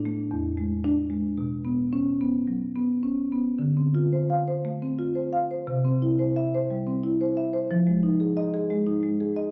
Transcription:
Already playing: A2 D4
0.05 A3
0.31 E2
0.57 G#3
0.84 D4
1.10 G#3
1.38 B2
1.65 B3
1.93 C#4
2.21 B3
2.48 F#3
2.76 B3
3.03 C#4
3.32 B3
3.59 D3
3.77 C4
3.95 F4
4.13 C5
4.30 F5
4.48 C5
4.65 A3
4.82 C4
4.99 F4
5.15 C5
5.33 F5
5.51 C5
5.67 C3
5.85 C4
6.02 E4
6.19 C5
6.36 E5
6.55 C5
6.71 G3
6.87 C4
7.04 E4
7.21 C5
7.37 E5
7.53 C5
7.71 F3
7.87 G#3
8.03 D#4
8.20 G#4
8.37 D#5
8.54 G#4
8.70 G#3
8.87 D#4
9.03 G#3
9.20 G#4
9.36 D#5

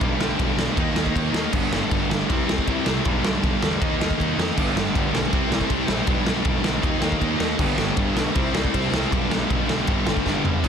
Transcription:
0.00 B1 G2 B2 D3 G3 B3 D4, kick, ride
0.18 B1 G2 B2 D3 G3 B3 D4, snare
0.38 B1 G2 B2 D3 G3 B3 D4, kick, ride
0.56 B1 G2 B2 D3 G3 B3 D4, snare
0.76 D#2 D#3 G3 A#3 D#4, kick, ride
0.95 D#2 D#3 G3 A#3 D#4, snare
1.06 kick
1.14 D#2 D#3 G3 A#3 D#4, kick, ride
1.33 D#2 D#3 G3 A#3 D#4, snare
1.52 G1 G2 D3 G3 B3 D4, kick, crash
1.70 G1 G2 D3 G3 B3 D4, snare
1.90 G1 G2 D3 G3 B3 D4, kick, ride
2.09 G1 G2 D3 G3 B3 D4, snare
2.29 C2 C3 G3 C4 E4, kick, ride
2.47 C2 C3 G3 C4 E4, snare
2.58 kick
2.67 C2 C3 G3 C4 E4, kick, ride
2.86 C2 C3 G3 C4 E4, snare
3.04 B1 G2 B2 D3 G3 B3 D4, kick, ride
3.23 B1 G2 B2 D3 G3 B3 D4, snare
3.43 B1 G2 B2 D3 G3 B3 D4, kick, ride
3.61 E2 G2 B2 D3 G3 B3 D4, snare
3.80 D#2 D#3 G3 A#3 D#4, kick, ride
3.99 D#2 D#3 G3 A#3 D#4, snare
4.10 kick
4.18 D#2 D#3 G3 A#3 D#4, kick, ride
4.37 F2 D#3 G3 A#3 D#4, snare
4.55 G1 G2 D3 G3 B3 D4, kick, crash
4.74 G1 G2 D3 G3 B3 D4, snare
4.93 G1 G2 D3 G3 B3 D4, kick, ride
5.12 B1 G2 D3 G3 B3 D4, snare
5.30 C2 C3 G3 C4 E4, kick, ride
5.35 C3
5.51 C2 C3 G3 C4 E4, snare
5.61 kick
5.69 C2 C3 G3 C4 E4, kick, ride
5.87 A#1 C3 G3 C4 E4, snare
6.06 B1 G2 B2 D3 G3 B3 D4, kick, ride
6.24 B1 G2 B2 D3 G3 B3 D4, snare
6.43 B1 G2 B2 D3 G3 B3 D4, kick, ride
6.62 B1 G2 B2 D3 G3 B3 D4, snare
6.81 D#2 D#3 G3 A#3 D#4, kick, ride
6.99 D#2 D#3 G3 A#3 D#4, snare
7.12 kick
7.18 D#2 D#3 G3 A#3 D#4, kick, ride
7.37 D#2 D#3 G3 A#3 D#4, snare
7.56 G1 G2 D3 G3 B3 D4, kick, crash
7.76 G1 G2 D3 G3 B3 D4, snare
7.96 G1 G2 D3 G3 B3 D4, kick, ride
8.16 B1 G2 D3 G3 B3 D4, snare
8.33 C2 C3 G3 C4 E4, kick, ride
8.53 C2 C3 G3 C4 E4, snare
8.64 kick
8.73 C2 C3 G3 C4 E4, kick, ride
8.92 C2 C3 G3 C4 E4, snare
9.12 B1 G2 B2 D3 G3 B3 D4, kick, ride
9.30 B1 G2 B2 D3 G3 B3 D4, snare
9.50 B1 G2 B2 D3 G3 B3 D4, kick, ride
9.67 B1 G2 B2 D3 G3 B3 D4, snare
9.87 G1 G2 D3 G3 B3 D4, kick, ride
10.05 G1 G2 D3 G3 B3 D4, snare
10.17 kick
10.25 G1 G2 D3 G3 B3 D4, kick, snare
10.43 F#1 G2 D3 G3 B3 D4, floor tom
10.63 F1 F2 C3 F3 A3, kick, crash

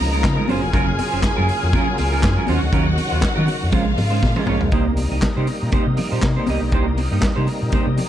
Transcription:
Already playing: C#3 F3 A#3 D#4 A#4 A#5
0.00 C#2
0.12 G#3 D#4 F4 A#4
0.23 C#3, muted clean electric guitar stroke, kick, snare, clap, closed hi-hat, high conga
0.37 G#3 D#4 F4 A#4
0.48 F#1 C#3 F#3 C#4 F4 G#4 C5 G#5, open hi-hat, high conga
0.62 F1, muted clean electric guitar stroke
0.73 F#1 F#3 C#4 F4 A#4, kick, closed hi-hat
0.87 muted clean electric guitar stroke
0.98 muted clean electric guitar stroke, open hi-hat, muted conga
1.12 F#1 F#3 C#4 F4 C5
1.22 muted clean electric guitar stroke, muted fingered electric bass stroke, kick, snare, clap, closed hi-hat, high conga
1.36 F#2 F#3 C#4 F4 A#4
1.48 muted clean electric guitar stroke, open hi-hat
1.62 F2, muted clean electric guitar stroke
1.73 F#3 C#4 F4 A#4, kick, closed hi-hat, muted conga
1.87 muted clean electric guitar stroke
1.98 C#2, muted clean electric guitar stroke, open hi-hat, muted conga
2.12 F#3 C#4 F4 A#4
2.22 F#2, muted clean electric guitar stroke, kick, snare, clap, closed hi-hat, high conga
2.37 F#3 C#4 F4 A#4
2.47 D#2 C#3 D#3 F#3 C#4 F4 F#4 C5 F#5, open hi-hat, high conga
2.62 D2, muted clean electric guitar stroke
2.72 D#2 F#3 C#4 F4 A#4, kick, closed hi-hat
2.87 muted clean electric guitar stroke
2.97 muted clean electric guitar stroke, open hi-hat, muted conga
3.11 D#2 F#3 C#4 F4 C5
3.21 muted clean electric guitar stroke, muted fingered electric bass stroke, kick, snare, clap, closed hi-hat, high conga
3.36 D#3 F#3 C#4 F4 A#4
3.47 muted clean electric guitar stroke, open hi-hat, muted conga
3.61 F2, muted clean electric guitar stroke
3.72 A#1 C3 G#3 A#3 C#4 F4 C5 F5, kick, closed hi-hat, muted conga, low conga
3.86 muted clean electric guitar stroke
3.97 G#2, muted clean electric guitar stroke, open hi-hat, muted conga, low conga
4.10 G#3 C#4 F4 C5
4.22 A#2, muted clean electric guitar stroke, kick, snare, high conga
4.36 G#3 C#4 F4 C5, high tom
4.47 A#1 G#3 C#4 F4 C#5, mid tom, high conga
4.61 B1, muted clean electric guitar stroke, floor tom
4.72 C2 C3 G3 A#3 D#4 G4 C5, kick, closed hi-hat
4.86 muted clean electric guitar stroke
4.97 muted clean electric guitar stroke, open hi-hat, muted conga
5.11 C2 A#3 D#4 G4 D#5
5.21 muted clean electric guitar stroke, muted fingered electric bass stroke, kick, snare, clap, closed hi-hat, high conga
5.37 C3 A#3 D#4 G4 C5
5.47 muted clean electric guitar stroke, open hi-hat, muted conga
5.62 A#2, muted clean electric guitar stroke
5.72 A#3 D#4 G4 C5, muted fingered electric bass stroke, kick, closed hi-hat, muted conga
5.86 C3, muted clean electric guitar stroke
5.97 muted clean electric guitar stroke, open hi-hat, muted conga, low conga
6.12 A#2 A#3 D#4 G4 C5
6.22 C3, muted clean electric guitar stroke, kick, snare, clap, closed hi-hat, high conga
6.37 A#3 D#4 G4 C5
6.46 C2 A#3 D#4 G4 D#5, open hi-hat, high conga
6.61 B1, muted clean electric guitar stroke
6.72 C2 A#3 D#4 G4 C5, kick, closed hi-hat
6.87 muted clean electric guitar stroke
6.97 muted clean electric guitar stroke, open hi-hat, muted conga
7.11 G2 A#3 D#4 G4 D#5
7.21 muted fingered electric bass stroke, muted clean electric guitar stroke, kick, snare, clap, closed hi-hat, high conga
7.36 C3 A#3 D#4 G4 C5
7.47 muted clean electric guitar stroke, open hi-hat, muted conga
7.61 A#2, muted clean electric guitar stroke
7.72 A#3 D#4 G4 C5, muted fingered electric bass stroke, kick, closed hi-hat, muted conga
7.87 C3, muted clean electric guitar stroke
7.97 muted clean electric guitar stroke, open hi-hat, muted conga, low conga

